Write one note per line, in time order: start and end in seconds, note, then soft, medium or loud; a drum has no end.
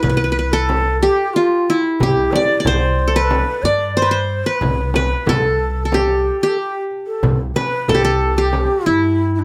0.00 1.06 C2 medium
0.00 0.79 E4 medium
0.00 0.53 B4 medium
0.00 0.09 B4 medium
0.00 darbuka dum medium
0.00 frame drum medium
0.09 0.17 B4 medium
0.17 0.24 B4 medium
0.24 0.31 B4 medium
0.32 0.38 B4 medium
0.39 1.49 B4 medium
0.52 1.00 A4 medium
0.52 1.70 A4 medium
0.69 darbuka tek medium
0.69 frame drum medium
1.01 1.35 G4 medium
1.01 2.03 G4 medium
1.34 1.73 F4 medium
1.34 1.76 F4 medium
1.67 3.10 E4 medium
1.67 darbuka ka soft
2.00 2.26 C2 medium
2.00 2.33 G4 medium
2.00 3.28 G4 medium
2.00 darbuka dum medium
2.00 frame drum medium
2.32 2.67 D5 medium
2.32 2.60 D5 medium
2.32 darbuka tek medium
2.32 frame drum medium
2.60 3.58 D5 medium
2.65 3.42 C2 medium
2.65 3.13 C5 medium
2.65 3.22 C5 loud
2.65 darbuka dum medium
2.65 frame drum medium
3.08 4.24 A4 medium
3.13 4.02 B4 loud
3.13 3.25 C5 medium
3.25 3.64 B4 medium
3.31 darbuka tek medium
3.31 frame drum medium
3.63 4.40 G2 medium
3.63 3.95 D5 medium
3.63 4.63 D5 medium
3.96 4.09 C5 medium
3.96 4.08 C5 medium
4.02 4.17 B4 medium
4.10 4.45 C5 medium
4.10 4.52 C5 medium
4.29 darbuka ka soft
4.45 4.95 B4 medium
4.45 4.57 C5 medium
4.57 4.94 B4 medium
4.61 5.12 C2 medium
4.61 darbuka dum medium
4.61 frame drum medium
4.94 5.28 B4 medium
4.94 6.05 B4 medium
4.94 frame drum medium
5.26 6.29 C2 medium
5.26 5.93 A4 medium
5.26 5.85 A4 medium
5.26 darbuka dum medium
5.26 frame drum medium
5.44 darbuka ka soft
5.85 7.02 A4 medium
5.92 6.43 G4 medium
5.92 5.98 A4 medium
5.92 darbuka tek medium
5.92 frame drum medium
5.97 6.40 G4 medium
6.25 darbuka ka soft
6.41 6.50 G4 medium
6.41 7.69 G4 medium
6.48 6.55 A4 medium
6.55 6.80 G4 medium
6.55 6.59 A4 medium
6.91 darbuka ka soft
7.06 7.37 A4 medium
7.23 7.49 C2 medium
7.23 frame drum medium
7.23 darbuka dum loud
7.55 7.90 B4 medium
7.55 8.66 B4 medium
7.55 darbuka tek medium
7.55 frame drum medium
7.88 8.65 C2 medium
7.88 8.01 A4 medium
7.88 8.04 A4 medium
7.88 darbuka dum medium
7.88 frame drum medium
7.95 8.38 G4 medium
8.02 8.39 A4 medium
8.02 9.21 A4 medium
8.37 8.88 G4 medium
8.37 9.44 G4 medium
8.53 darbuka tek medium
8.53 frame drum medium
8.86 9.44 G2 medium
8.86 9.44 E4 medium
8.86 9.34 E4 medium
9.20 darbuka ka soft
9.35 9.41 E4 medium
9.39 9.43 D4 medium